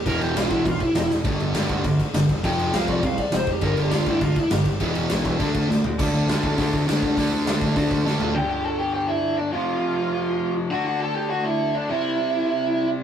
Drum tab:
CC |xxxxxxx-|xxxxxxxx|xxxxxxxx|xxxxxxxx|
HH |--------|--------|--------|--------|
SD |--o---oo|--o---o-|--o---o-|--o---o-|
FT |--------|--------|--------|--------|
BD |o--ooo--|o--ooo-o|o--ooo-o|o--ooo-o|

CC |xxxxxx--|x-------|--------|--------|
HH |--------|--o-o-o-|o-o-o---|--------|
SD |--o---o-|--o---o-|--o---o-|--------|
FT |-------o|--------|-------o|--------|
BD |o--ooo--|o--ooo-o|o--ooo--|--------|

CC |--------|--------|--------|
HH |--------|--------|--------|
SD |--------|--------|--------|
FT |--------|--------|--------|
BD |--------|--------|--------|